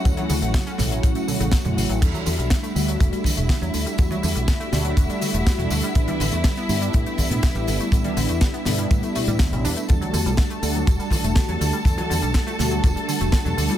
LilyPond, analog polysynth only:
\new Staff \with { instrumentName = "Analog polysynth" } { \time 4/4 \key e \dorian \tempo 4 = 122 <fis a cis' e'>4. <fis a cis' e'>2~ <fis a cis' e'>8 | <g a d' fis'>4. <g a d' fis'>2~ <g a d' fis'>8 | <g a d' fis'>4. <g a d' fis'>2~ <g a d' fis'>8 | <g b d' e'>4. <g b d' e'>2~ <g b d' e'>8 |
<g b d' e'>4. <g b d' e'>2~ <g b d' e'>8 | <g a d' fis'>4. <g a d' fis'>2~ <g a d' fis'>8 | <g a d' fis'>4. <g a d' fis'>2~ <g a d' fis'>8 | }